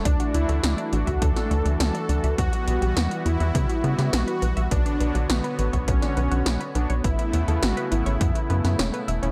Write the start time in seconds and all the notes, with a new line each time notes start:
0.05 D2 E3 A3 D4 F#4, kick, closed hi-hat
0.20 F#4, closed hi-hat
0.34 D2 D4 E4, closed hi-hat
0.49 D2 A4, closed hi-hat
0.64 D2 D4, snare, closed hi-hat
0.78 D5, closed hi-hat
0.93 A1 D4 F#4, closed hi-hat
1.07 D2 E5, kick, closed hi-hat
1.22 D2 D4 A4, kick, closed hi-hat
1.36 F#4, snare, closed hi-hat
1.51 D2 D4, closed hi-hat
1.65 D2 A4, closed hi-hat
1.80 D2 D4 A4, snare, closed hi-hat
1.94 D5, closed hi-hat
2.09 D2 D4, closed hi-hat
2.24 D2 E5, closed hi-hat
2.38 E2 G3 B3 F#4, kick, closed hi-hat
2.53 F#4, closed hi-hat
2.67 B1 B3 F#4, closed hi-hat
2.82 B1 G4, closed hi-hat
2.96 E2 B3, snare, closed hi-hat
3.11 B4, closed hi-hat
3.26 E2 B3 E4, closed hi-hat
3.40 E2 E5, closed hi-hat
3.55 C#3 B3, kick, closed hi-hat
3.69 F#4, closed hi-hat
3.84 C#3 B3, closed hi-hat
3.98 C#3 G4, snare, closed hi-hat
4.13 B1 B3 F#4, snare, closed hi-hat
4.28 B4, closed hi-hat
4.42 B1 B3, closed hi-hat
4.57 B1 E5, closed hi-hat
4.71 B1 D3 B3 D4 C#5, kick, closed hi-hat
4.86 D4, closed hi-hat
5.00 B1 B3, closed hi-hat
5.15 B1 F#4, closed hi-hat
5.29 B1 B3, snare, closed hi-hat
5.44 B4, closed hi-hat
5.59 A1 B3, closed hi-hat
5.73 B1 C#5, kick, closed hi-hat
5.88 B1 B3 C#4, kick, closed hi-hat
6.02 D4, snare, closed hi-hat
6.17 B1 B3, closed hi-hat
6.31 B1 F#4, closed hi-hat
6.46 B1 B3, snare, closed hi-hat
6.60 B4, closed hi-hat
6.75 B1 B3 D4, closed hi-hat
6.90 B1 C#5, closed hi-hat
7.04 A1 C#3 A3 B3 E4, kick, closed hi-hat
7.19 E4, closed hi-hat
7.33 E2 B3, closed hi-hat
7.48 E2 A4, closed hi-hat
7.62 A1 B3 F#4, snare, closed hi-hat
7.77 B4, closed hi-hat
7.91 A1 B3 E4, closed hi-hat
8.06 A1 C#5, closed hi-hat
8.21 F#2 B3, kick, closed hi-hat
8.35 E4, closed hi-hat
8.50 F#2 B3, closed hi-hat
8.64 F#2 B3, snare, closed hi-hat
8.79 E1 C#4, snare, closed hi-hat
8.94 B3, closed hi-hat
9.08 E1 E5, closed hi-hat
9.23 E1 C#4, closed hi-hat